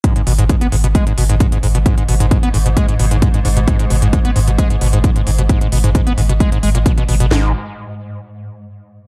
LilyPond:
<<
  \new Staff \with { instrumentName = "Acid bass" } { \clef bass \time 4/4 \key gis \minor \tempo 4 = 132 gis,16 gis,16 b,16 gis,16 gis,16 b16 gis,16 b,16 gis16 gis,16 b,16 gis,16 gis,16 gis,16 gis,16 b,16 | gis,16 gis,16 b,16 gis,16 gis,16 b16 gis,16 b,16 gis16 gis,16 b,16 gis,16 gis,16 gis,16 gis,16 b,16 | gis,16 gis,16 b,16 gis,16 gis,16 b16 gis,16 b,16 gis16 gis,16 b,16 gis,16 gis,16 gis,16 gis,16 b,16 | gis,16 gis,16 b,16 gis,16 gis,16 b16 gis,16 b,16 gis16 gis,16 gis16 ais,16 b,16 b,16 b,16 b,16 |
gis,8 r2. r8 | }
  \new Staff \with { instrumentName = "Synth drone" } { \clef bass \time 4/4 \key gis \minor gis,1~ | gis,1~ | gis,1~ | gis,1 |
r1 | }
  \new Staff \with { instrumentName = "Sub bass" } { \clef bass \time 4/4 \key gis \minor r8 gis,,16 gis,,16 r8 gis,,16 gis,,16 r8 gis,,16 gis,,16 r8 gis,,16 gis,,16 | r8 gis,,16 gis,,16 r8 gis,,16 gis,,16 r8 gis,,16 gis,,16 r8 gis,,16 gis,,16 | r8 gis,,16 gis,,16 r8 gis,,16 gis,,16 r8 gis,,16 gis,,16 r8 gis,,16 gis,,16 | r8 gis,,16 gis,,16 r8 gis,,16 gis,,16 r8 gis,,16 gis,,16 r8 gis,,16 gis,,16 |
gis,,8 r2. r8 | }
  \new DrumStaff \with { instrumentName = "Drums" } \drummode { \time 4/4 <hh bd>16 hh16 hho16 hh16 <hh bd>16 hh16 hho16 hh16 <hh bd>16 hh16 hho16 hh16 <hh bd>16 hh16 hho16 hh16 | <hh bd>16 hh16 hho16 hh16 <hh bd>16 hh16 hho16 hh16 <hh bd>16 hh16 hho16 hh16 <hh bd>16 hh16 hho16 hh16 | <hh bd>16 hh16 hho16 hh16 <hh bd>16 hh16 hho16 hh16 <hh bd>16 hh16 hho16 hh16 <hh bd>16 hh16 hho16 hh16 | <hh bd>16 hh16 hho16 hh16 <hh bd>16 hh16 hho16 hh16 <hh bd>16 hh16 hho16 hh16 <hh bd>16 hh16 hho16 hh16 |
sn4 r4 r4 r4 | }
>>